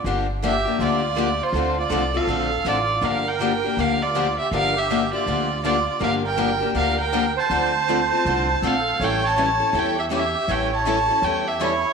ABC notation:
X:1
M:4/4
L:1/16
Q:"Swing" 1/4=161
K:Gdor
V:1 name="Violin"
z4 e4 d6 c2- | c2 d4 f6 d4 | f2 g6 f2 d4 e2 | f2 e4 d6 d4 |
f2 g6 f2 g4 a2- | a12 f4 | g2 a6 g2 e2 e4 | g2 a6 g2 e2 ^c4 |]
V:2 name="Accordion"
z4 G4 F6 F2- | F2 F4 A6 F4 | B2 B6 B2 F4 G2 | B2 G4 F6 F4 |
B2 B6 B2 B4 c2- | c12 A4 | ^c2 c6 c2 G2 G4 | ^c2 c6 c2 G2 E4 |]
V:3 name="Steel-string acoustic guitar"
[D,F,B,DG]2 z2 [D,F,B,DG] z [B,DG]2 [D,F,B,DG]2 z2 [D,F,B,DG] z3 | [D,A,CFA]2 z2 [D,A,CFA] z [CFA]2 [D,A,CFA]2 z2 [D,A,CFA] z3 | [D,F,B,DG]2 z2 [D,F,B,DG] z [B,DG]2 [D,F,B,DG]2 z2 [D,F,B,DG] z3 | [D,F,B,DG]2 z2 [D,F,B,DG] z [B,DG]2 [D,F,B,DG]2 z2 [D,F,B,DG] z3 |
[D,F,B,DG]2 z2 [D,F,B,DG] z [B,DG]2 [D,F,B,DG]2 z2 [D,F,B,DG] z3 | [D,A,CFA]2 z2 [D,A,CFA] z [CFA]2 [D,A,CFA]2 z2 [D,A,CFA] z3 | [E,G,^CEA]2 z2 [E,G,CEA] z [CEA]2 [E,G,CEA]2 z2 [E,G,CEA] z3 | [E,G,^CEA]2 z2 [E,G,CEA] z [CEA]2 [E,G,CEA]2 z2 [E,G,CEA] z3 |]
V:4 name="Steel-string acoustic guitar"
[D,F,B,DG]2 z2 [D,F,B,DG] z3 [D,F,B,DG]2 z2 [D,F,B,DG] z3 | [D,F,CDA]2 z2 [D,F,CDA] z3 [D,F,CDA]2 z2 [D,F,CDA] z3 | [D,F,B,DG]2 z2 [D,F,B,DG] z3 [D,F,B,DG]2 z2 [D,F,B,DG] z3 | [D,F,B,DG]2 z2 [D,F,B,DG] z3 [D,F,B,DG]2 z2 [D,F,B,DG] z3 |
[D,F,B,DG]2 z2 [D,F,B,DG] z3 [D,F,B,DG]2 z2 [D,F,B,DG] z3 | [D,F,CDA]2 z2 [D,F,CDA] z3 [D,F,CDA]2 z2 [D,F,CDA] z3 | [E,G,^CEA]2 z2 [E,G,CEA] z3 [E,G,CEA]2 z2 [E,G,CEA] z3 | [E,G,^CEA]2 z2 [E,G,CEA] z3 [E,G,CEA]2 z2 [E,G,CEA] z3 |]
V:5 name="Upright bass" clef=bass
G,,,8 D,,8 | D,,4 C,,4 B,,,4 A,,,4 | G,,,8 D,,8 | G,,,8 D,,8 |
G,,,8 D,,8 | D,,8 C,,4 B,,,4 | A,,,8 E,,8 | A,,,8 E,,8 |]